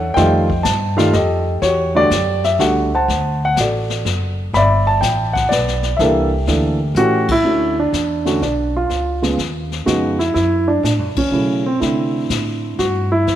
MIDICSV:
0, 0, Header, 1, 4, 480
1, 0, Start_track
1, 0, Tempo, 485437
1, 158, Time_signature, 3, 2, 24, 8
1, 13204, End_track
2, 0, Start_track
2, 0, Title_t, "Grand piano"
2, 0, Program_c, 0, 0
2, 0, Note_on_c, 0, 69, 63
2, 0, Note_on_c, 0, 73, 64
2, 0, Note_on_c, 0, 78, 89
2, 130, Note_off_c, 0, 69, 0
2, 131, Note_off_c, 0, 73, 0
2, 139, Note_on_c, 0, 79, 96
2, 156, Note_on_c, 0, 75, 67
2, 161, Note_on_c, 0, 51, 65
2, 164, Note_on_c, 0, 55, 67
2, 164, Note_on_c, 0, 57, 68
2, 164, Note_on_c, 0, 72, 69
2, 168, Note_on_c, 0, 65, 78
2, 169, Note_off_c, 0, 78, 0
2, 454, Note_off_c, 0, 51, 0
2, 456, Note_off_c, 0, 55, 0
2, 456, Note_off_c, 0, 57, 0
2, 458, Note_off_c, 0, 65, 0
2, 596, Note_off_c, 0, 79, 0
2, 626, Note_on_c, 0, 81, 82
2, 926, Note_off_c, 0, 75, 0
2, 930, Note_off_c, 0, 72, 0
2, 957, Note_on_c, 0, 51, 75
2, 957, Note_on_c, 0, 55, 72
2, 966, Note_on_c, 0, 57, 70
2, 966, Note_on_c, 0, 77, 82
2, 970, Note_off_c, 0, 81, 0
2, 971, Note_on_c, 0, 65, 86
2, 1101, Note_off_c, 0, 51, 0
2, 1101, Note_off_c, 0, 55, 0
2, 1105, Note_off_c, 0, 57, 0
2, 1107, Note_off_c, 0, 65, 0
2, 1121, Note_on_c, 0, 75, 79
2, 1125, Note_off_c, 0, 77, 0
2, 1133, Note_on_c, 0, 67, 60
2, 1133, Note_on_c, 0, 69, 61
2, 1497, Note_off_c, 0, 75, 0
2, 1575, Note_off_c, 0, 67, 0
2, 1575, Note_off_c, 0, 69, 0
2, 1601, Note_on_c, 0, 73, 80
2, 1605, Note_on_c, 0, 67, 54
2, 1613, Note_on_c, 0, 66, 60
2, 1921, Note_off_c, 0, 66, 0
2, 1926, Note_on_c, 0, 55, 57
2, 1929, Note_on_c, 0, 50, 59
2, 1931, Note_on_c, 0, 57, 59
2, 1936, Note_on_c, 0, 66, 70
2, 1937, Note_off_c, 0, 67, 0
2, 1938, Note_off_c, 0, 73, 0
2, 1943, Note_on_c, 0, 74, 104
2, 1952, Note_on_c, 0, 67, 61
2, 2066, Note_off_c, 0, 55, 0
2, 2067, Note_off_c, 0, 50, 0
2, 2069, Note_off_c, 0, 57, 0
2, 2071, Note_off_c, 0, 66, 0
2, 2384, Note_off_c, 0, 74, 0
2, 2419, Note_on_c, 0, 76, 75
2, 2536, Note_off_c, 0, 67, 0
2, 2562, Note_on_c, 0, 50, 58
2, 2567, Note_on_c, 0, 55, 53
2, 2569, Note_on_c, 0, 57, 54
2, 2570, Note_on_c, 0, 66, 64
2, 2573, Note_off_c, 0, 76, 0
2, 2576, Note_on_c, 0, 78, 76
2, 2857, Note_off_c, 0, 50, 0
2, 2859, Note_off_c, 0, 55, 0
2, 2860, Note_off_c, 0, 57, 0
2, 2861, Note_off_c, 0, 66, 0
2, 2874, Note_off_c, 0, 78, 0
2, 2912, Note_on_c, 0, 78, 66
2, 2913, Note_on_c, 0, 72, 64
2, 2919, Note_on_c, 0, 81, 87
2, 3352, Note_off_c, 0, 81, 0
2, 3396, Note_off_c, 0, 78, 0
2, 3411, Note_on_c, 0, 78, 89
2, 3496, Note_off_c, 0, 72, 0
2, 3535, Note_off_c, 0, 78, 0
2, 3556, Note_on_c, 0, 66, 44
2, 3561, Note_on_c, 0, 69, 45
2, 3566, Note_on_c, 0, 74, 61
2, 3993, Note_off_c, 0, 74, 0
2, 4307, Note_off_c, 0, 66, 0
2, 4309, Note_off_c, 0, 69, 0
2, 4491, Note_on_c, 0, 83, 98
2, 4517, Note_on_c, 0, 74, 76
2, 4517, Note_on_c, 0, 76, 72
2, 4791, Note_off_c, 0, 83, 0
2, 4816, Note_on_c, 0, 81, 93
2, 4951, Note_on_c, 0, 79, 85
2, 4971, Note_off_c, 0, 81, 0
2, 5266, Note_off_c, 0, 74, 0
2, 5266, Note_off_c, 0, 76, 0
2, 5274, Note_on_c, 0, 78, 82
2, 5293, Note_off_c, 0, 79, 0
2, 5427, Note_on_c, 0, 74, 76
2, 5440, Note_off_c, 0, 78, 0
2, 5461, Note_on_c, 0, 71, 58
2, 5880, Note_off_c, 0, 74, 0
2, 5898, Note_off_c, 0, 71, 0
2, 5900, Note_on_c, 0, 76, 73
2, 5925, Note_on_c, 0, 52, 63
2, 5928, Note_on_c, 0, 58, 57
2, 5933, Note_on_c, 0, 69, 69
2, 5934, Note_on_c, 0, 62, 61
2, 5937, Note_on_c, 0, 70, 58
2, 5939, Note_on_c, 0, 67, 50
2, 6217, Note_off_c, 0, 52, 0
2, 6218, Note_off_c, 0, 58, 0
2, 6221, Note_off_c, 0, 62, 0
2, 6221, Note_off_c, 0, 69, 0
2, 6403, Note_on_c, 0, 52, 52
2, 6407, Note_on_c, 0, 58, 48
2, 6407, Note_on_c, 0, 62, 49
2, 6411, Note_on_c, 0, 69, 59
2, 6696, Note_off_c, 0, 52, 0
2, 6698, Note_off_c, 0, 58, 0
2, 6698, Note_off_c, 0, 62, 0
2, 6699, Note_off_c, 0, 69, 0
2, 6849, Note_off_c, 0, 70, 0
2, 6885, Note_off_c, 0, 67, 0
2, 6892, Note_on_c, 0, 52, 50
2, 6895, Note_on_c, 0, 57, 52
2, 6895, Note_on_c, 0, 66, 98
2, 6896, Note_on_c, 0, 61, 53
2, 6900, Note_on_c, 0, 67, 61
2, 7156, Note_off_c, 0, 76, 0
2, 7180, Note_off_c, 0, 52, 0
2, 7181, Note_off_c, 0, 57, 0
2, 7182, Note_off_c, 0, 61, 0
2, 7184, Note_off_c, 0, 67, 0
2, 7224, Note_off_c, 0, 66, 0
2, 7234, Note_on_c, 0, 64, 94
2, 7356, Note_on_c, 0, 50, 43
2, 7359, Note_on_c, 0, 57, 41
2, 7365, Note_on_c, 0, 61, 43
2, 7369, Note_on_c, 0, 66, 45
2, 7652, Note_off_c, 0, 50, 0
2, 7653, Note_off_c, 0, 57, 0
2, 7656, Note_off_c, 0, 61, 0
2, 7659, Note_off_c, 0, 66, 0
2, 7668, Note_off_c, 0, 64, 0
2, 7708, Note_on_c, 0, 62, 76
2, 8161, Note_on_c, 0, 50, 60
2, 8164, Note_on_c, 0, 61, 51
2, 8168, Note_on_c, 0, 57, 51
2, 8172, Note_on_c, 0, 66, 64
2, 8191, Note_off_c, 0, 62, 0
2, 8302, Note_off_c, 0, 50, 0
2, 8304, Note_off_c, 0, 61, 0
2, 8306, Note_off_c, 0, 57, 0
2, 8308, Note_off_c, 0, 66, 0
2, 8330, Note_on_c, 0, 62, 70
2, 8629, Note_off_c, 0, 62, 0
2, 8667, Note_on_c, 0, 65, 79
2, 9112, Note_off_c, 0, 65, 0
2, 9119, Note_on_c, 0, 49, 51
2, 9123, Note_on_c, 0, 56, 46
2, 9126, Note_on_c, 0, 59, 45
2, 9127, Note_on_c, 0, 65, 55
2, 9261, Note_off_c, 0, 49, 0
2, 9264, Note_off_c, 0, 56, 0
2, 9265, Note_off_c, 0, 59, 0
2, 9265, Note_off_c, 0, 65, 0
2, 9747, Note_on_c, 0, 49, 51
2, 9749, Note_on_c, 0, 56, 50
2, 9752, Note_on_c, 0, 59, 48
2, 9753, Note_on_c, 0, 66, 78
2, 9761, Note_on_c, 0, 63, 59
2, 10048, Note_off_c, 0, 49, 0
2, 10049, Note_off_c, 0, 56, 0
2, 10050, Note_off_c, 0, 59, 0
2, 10055, Note_off_c, 0, 63, 0
2, 10077, Note_on_c, 0, 64, 76
2, 10093, Note_off_c, 0, 66, 0
2, 10212, Note_off_c, 0, 64, 0
2, 10227, Note_on_c, 0, 64, 83
2, 10558, Note_on_c, 0, 62, 80
2, 10570, Note_off_c, 0, 64, 0
2, 10708, Note_off_c, 0, 62, 0
2, 10723, Note_on_c, 0, 62, 66
2, 10796, Note_off_c, 0, 62, 0
2, 11052, Note_on_c, 0, 61, 72
2, 11195, Note_on_c, 0, 49, 46
2, 11200, Note_on_c, 0, 54, 41
2, 11201, Note_on_c, 0, 57, 39
2, 11205, Note_on_c, 0, 64, 47
2, 11491, Note_off_c, 0, 49, 0
2, 11494, Note_off_c, 0, 54, 0
2, 11495, Note_off_c, 0, 57, 0
2, 11496, Note_off_c, 0, 61, 0
2, 11497, Note_off_c, 0, 64, 0
2, 11532, Note_on_c, 0, 60, 75
2, 11661, Note_off_c, 0, 60, 0
2, 11669, Note_on_c, 0, 50, 49
2, 11672, Note_on_c, 0, 57, 46
2, 11675, Note_on_c, 0, 60, 48
2, 11680, Note_on_c, 0, 64, 59
2, 12646, Note_on_c, 0, 66, 77
2, 12946, Note_off_c, 0, 66, 0
2, 12956, Note_off_c, 0, 64, 0
2, 12971, Note_on_c, 0, 64, 89
2, 13021, Note_off_c, 0, 50, 0
2, 13023, Note_off_c, 0, 57, 0
2, 13024, Note_off_c, 0, 60, 0
2, 13204, Note_off_c, 0, 64, 0
2, 13204, End_track
3, 0, Start_track
3, 0, Title_t, "Upright bass"
3, 0, Program_c, 1, 32
3, 0, Note_on_c, 1, 40, 80
3, 147, Note_off_c, 1, 40, 0
3, 161, Note_on_c, 1, 41, 82
3, 627, Note_off_c, 1, 41, 0
3, 639, Note_on_c, 1, 43, 85
3, 1106, Note_off_c, 1, 43, 0
3, 1120, Note_on_c, 1, 41, 77
3, 1587, Note_off_c, 1, 41, 0
3, 1599, Note_on_c, 1, 40, 82
3, 2067, Note_off_c, 1, 40, 0
3, 2081, Note_on_c, 1, 42, 88
3, 2548, Note_off_c, 1, 42, 0
3, 2562, Note_on_c, 1, 37, 84
3, 3029, Note_off_c, 1, 37, 0
3, 3048, Note_on_c, 1, 38, 83
3, 3512, Note_off_c, 1, 38, 0
3, 3523, Note_on_c, 1, 33, 84
3, 3989, Note_off_c, 1, 33, 0
3, 4007, Note_on_c, 1, 30, 75
3, 4471, Note_off_c, 1, 30, 0
3, 4484, Note_on_c, 1, 31, 82
3, 4949, Note_off_c, 1, 31, 0
3, 4964, Note_on_c, 1, 33, 90
3, 5429, Note_off_c, 1, 33, 0
3, 5446, Note_on_c, 1, 35, 77
3, 5909, Note_off_c, 1, 35, 0
3, 5924, Note_on_c, 1, 36, 84
3, 6388, Note_off_c, 1, 36, 0
3, 6401, Note_on_c, 1, 38, 90
3, 6863, Note_off_c, 1, 38, 0
3, 6869, Note_on_c, 1, 45, 82
3, 7340, Note_off_c, 1, 45, 0
3, 7345, Note_on_c, 1, 38, 64
3, 7818, Note_off_c, 1, 38, 0
3, 7837, Note_on_c, 1, 40, 70
3, 8304, Note_off_c, 1, 40, 0
3, 8317, Note_on_c, 1, 35, 71
3, 8784, Note_off_c, 1, 35, 0
3, 8796, Note_on_c, 1, 37, 67
3, 9264, Note_off_c, 1, 37, 0
3, 9273, Note_on_c, 1, 39, 77
3, 9743, Note_off_c, 1, 39, 0
3, 9757, Note_on_c, 1, 41, 74
3, 10224, Note_off_c, 1, 41, 0
3, 10234, Note_on_c, 1, 42, 73
3, 10703, Note_off_c, 1, 42, 0
3, 10712, Note_on_c, 1, 45, 78
3, 10867, Note_off_c, 1, 45, 0
3, 10867, Note_on_c, 1, 42, 48
3, 11023, Note_off_c, 1, 42, 0
3, 11028, Note_on_c, 1, 40, 54
3, 11183, Note_off_c, 1, 40, 0
3, 11188, Note_on_c, 1, 47, 70
3, 11660, Note_off_c, 1, 47, 0
3, 11679, Note_on_c, 1, 48, 69
3, 12145, Note_off_c, 1, 48, 0
3, 12158, Note_on_c, 1, 45, 72
3, 12624, Note_off_c, 1, 45, 0
3, 12642, Note_on_c, 1, 43, 65
3, 13106, Note_off_c, 1, 43, 0
3, 13119, Note_on_c, 1, 41, 66
3, 13204, Note_off_c, 1, 41, 0
3, 13204, End_track
4, 0, Start_track
4, 0, Title_t, "Drums"
4, 162, Note_on_c, 9, 25, 50
4, 162, Note_on_c, 9, 38, 42
4, 164, Note_on_c, 9, 36, 20
4, 261, Note_off_c, 9, 38, 0
4, 263, Note_off_c, 9, 36, 0
4, 491, Note_on_c, 9, 36, 54
4, 590, Note_off_c, 9, 36, 0
4, 641, Note_on_c, 9, 38, 53
4, 641, Note_on_c, 9, 44, 59
4, 643, Note_on_c, 9, 36, 21
4, 740, Note_off_c, 9, 38, 0
4, 740, Note_off_c, 9, 44, 0
4, 742, Note_off_c, 9, 36, 0
4, 972, Note_on_c, 9, 38, 37
4, 1071, Note_off_c, 9, 38, 0
4, 1118, Note_on_c, 9, 38, 41
4, 1123, Note_on_c, 9, 36, 24
4, 1217, Note_off_c, 9, 38, 0
4, 1221, Note_off_c, 9, 36, 0
4, 1602, Note_off_c, 9, 25, 0
4, 1602, Note_on_c, 9, 25, 40
4, 1602, Note_on_c, 9, 38, 43
4, 1604, Note_on_c, 9, 36, 23
4, 1701, Note_off_c, 9, 38, 0
4, 1703, Note_off_c, 9, 36, 0
4, 2085, Note_on_c, 9, 36, 20
4, 2088, Note_on_c, 9, 38, 59
4, 2088, Note_on_c, 9, 44, 49
4, 2184, Note_off_c, 9, 36, 0
4, 2187, Note_off_c, 9, 38, 0
4, 2187, Note_off_c, 9, 44, 0
4, 2413, Note_on_c, 9, 38, 37
4, 2512, Note_off_c, 9, 38, 0
4, 2567, Note_on_c, 9, 36, 18
4, 2567, Note_on_c, 9, 38, 42
4, 2666, Note_off_c, 9, 36, 0
4, 2666, Note_off_c, 9, 38, 0
4, 3049, Note_on_c, 9, 36, 19
4, 3057, Note_off_c, 9, 25, 0
4, 3057, Note_on_c, 9, 25, 48
4, 3057, Note_on_c, 9, 38, 43
4, 3148, Note_off_c, 9, 36, 0
4, 3155, Note_off_c, 9, 38, 0
4, 3528, Note_on_c, 9, 36, 25
4, 3528, Note_on_c, 9, 38, 58
4, 3528, Note_on_c, 9, 44, 55
4, 3627, Note_off_c, 9, 36, 0
4, 3627, Note_off_c, 9, 38, 0
4, 3627, Note_off_c, 9, 44, 0
4, 3855, Note_on_c, 9, 38, 38
4, 3954, Note_off_c, 9, 38, 0
4, 4009, Note_on_c, 9, 36, 26
4, 4011, Note_on_c, 9, 38, 41
4, 4108, Note_off_c, 9, 36, 0
4, 4109, Note_off_c, 9, 38, 0
4, 4487, Note_on_c, 9, 36, 19
4, 4491, Note_off_c, 9, 25, 0
4, 4491, Note_on_c, 9, 25, 51
4, 4491, Note_on_c, 9, 38, 44
4, 4586, Note_off_c, 9, 36, 0
4, 4589, Note_off_c, 9, 38, 0
4, 4967, Note_on_c, 9, 36, 23
4, 4969, Note_on_c, 9, 38, 57
4, 4969, Note_on_c, 9, 44, 50
4, 5066, Note_off_c, 9, 36, 0
4, 5068, Note_off_c, 9, 38, 0
4, 5068, Note_off_c, 9, 44, 0
4, 5295, Note_on_c, 9, 36, 54
4, 5300, Note_on_c, 9, 38, 38
4, 5394, Note_off_c, 9, 36, 0
4, 5398, Note_off_c, 9, 38, 0
4, 5452, Note_on_c, 9, 38, 42
4, 5551, Note_off_c, 9, 38, 0
4, 5613, Note_on_c, 9, 38, 28
4, 5712, Note_off_c, 9, 38, 0
4, 5763, Note_on_c, 9, 38, 41
4, 5862, Note_off_c, 9, 38, 0
4, 5925, Note_on_c, 9, 36, 22
4, 5927, Note_off_c, 9, 25, 0
4, 5927, Note_on_c, 9, 25, 48
4, 5927, Note_on_c, 9, 38, 41
4, 6024, Note_off_c, 9, 36, 0
4, 6025, Note_off_c, 9, 38, 0
4, 6402, Note_on_c, 9, 38, 40
4, 6403, Note_on_c, 9, 36, 19
4, 6501, Note_off_c, 9, 38, 0
4, 6502, Note_off_c, 9, 36, 0
4, 6878, Note_on_c, 9, 44, 52
4, 6977, Note_off_c, 9, 44, 0
4, 7203, Note_on_c, 9, 49, 73
4, 7208, Note_on_c, 9, 36, 72
4, 7302, Note_off_c, 9, 49, 0
4, 7306, Note_off_c, 9, 36, 0
4, 7361, Note_off_c, 9, 25, 0
4, 7361, Note_on_c, 9, 25, 41
4, 7841, Note_on_c, 9, 36, 18
4, 7846, Note_on_c, 9, 38, 47
4, 7846, Note_on_c, 9, 44, 42
4, 7940, Note_off_c, 9, 36, 0
4, 7945, Note_off_c, 9, 38, 0
4, 7945, Note_off_c, 9, 44, 0
4, 8167, Note_on_c, 9, 38, 30
4, 8266, Note_off_c, 9, 38, 0
4, 8320, Note_on_c, 9, 36, 18
4, 8324, Note_on_c, 9, 38, 32
4, 8419, Note_off_c, 9, 36, 0
4, 8423, Note_off_c, 9, 38, 0
4, 8799, Note_on_c, 9, 36, 19
4, 8800, Note_off_c, 9, 25, 0
4, 8800, Note_on_c, 9, 25, 39
4, 8800, Note_on_c, 9, 38, 33
4, 8897, Note_off_c, 9, 36, 0
4, 8899, Note_off_c, 9, 38, 0
4, 9129, Note_on_c, 9, 38, 47
4, 9228, Note_off_c, 9, 38, 0
4, 9277, Note_on_c, 9, 36, 20
4, 9279, Note_on_c, 9, 38, 35
4, 9376, Note_off_c, 9, 36, 0
4, 9378, Note_off_c, 9, 38, 0
4, 9609, Note_on_c, 9, 38, 31
4, 9707, Note_off_c, 9, 38, 0
4, 9758, Note_on_c, 9, 36, 18
4, 9762, Note_on_c, 9, 38, 48
4, 9762, Note_on_c, 9, 44, 43
4, 9857, Note_off_c, 9, 36, 0
4, 9861, Note_off_c, 9, 38, 0
4, 9861, Note_off_c, 9, 44, 0
4, 10082, Note_on_c, 9, 38, 28
4, 10181, Note_off_c, 9, 38, 0
4, 10237, Note_on_c, 9, 36, 21
4, 10239, Note_off_c, 9, 25, 0
4, 10239, Note_on_c, 9, 25, 42
4, 10239, Note_on_c, 9, 38, 34
4, 10336, Note_off_c, 9, 36, 0
4, 10338, Note_off_c, 9, 38, 0
4, 10719, Note_on_c, 9, 36, 20
4, 10726, Note_on_c, 9, 38, 43
4, 10726, Note_on_c, 9, 44, 48
4, 10818, Note_off_c, 9, 36, 0
4, 10824, Note_off_c, 9, 38, 0
4, 10824, Note_off_c, 9, 44, 0
4, 11038, Note_on_c, 9, 51, 60
4, 11044, Note_on_c, 9, 36, 66
4, 11137, Note_off_c, 9, 51, 0
4, 11143, Note_off_c, 9, 36, 0
4, 11683, Note_off_c, 9, 25, 0
4, 11683, Note_on_c, 9, 25, 45
4, 11683, Note_on_c, 9, 36, 17
4, 11683, Note_on_c, 9, 38, 34
4, 11782, Note_off_c, 9, 36, 0
4, 11782, Note_off_c, 9, 38, 0
4, 12162, Note_on_c, 9, 38, 49
4, 12162, Note_on_c, 9, 44, 47
4, 12163, Note_on_c, 9, 36, 19
4, 12261, Note_off_c, 9, 36, 0
4, 12261, Note_off_c, 9, 38, 0
4, 12261, Note_off_c, 9, 44, 0
4, 12644, Note_on_c, 9, 36, 15
4, 12644, Note_on_c, 9, 38, 34
4, 12743, Note_off_c, 9, 36, 0
4, 12743, Note_off_c, 9, 38, 0
4, 13123, Note_on_c, 9, 36, 20
4, 13124, Note_off_c, 9, 25, 0
4, 13124, Note_on_c, 9, 25, 37
4, 13124, Note_on_c, 9, 38, 37
4, 13204, Note_off_c, 9, 25, 0
4, 13204, Note_off_c, 9, 36, 0
4, 13204, Note_off_c, 9, 38, 0
4, 13204, End_track
0, 0, End_of_file